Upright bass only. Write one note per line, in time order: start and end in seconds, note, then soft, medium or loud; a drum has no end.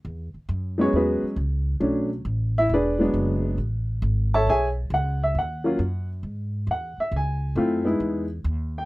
0.05 0.33 E2 medium
0.34 muted upright bass stroke soft
0.49 0.92 F#2 medium
0.93 1.21 E2 medium
1.23 muted upright bass stroke soft
1.36 1.80 C#2 medium
1.81 2.24 B1 medium
2.25 2.68 A1 medium
2.69 3.12 E1 medium
3.14 3.57 F#1 medium
3.58 4.01 A1 medium
4.02 4.45 G#1 medium
4.47 4.90 B1 medium
4.90 5.33 C#2 medium
5.35 5.78 D#2 medium
5.79 6.22 F#2 medium
6.23 6.66 G#2 medium
6.67 6.95 E2 medium
6.98 muted upright bass stroke soft
7.12 7.55 C#2 medium
7.55 7.99 F#2 medium
8.00 8.43 E2 medium
8.44 8.85 D#2 medium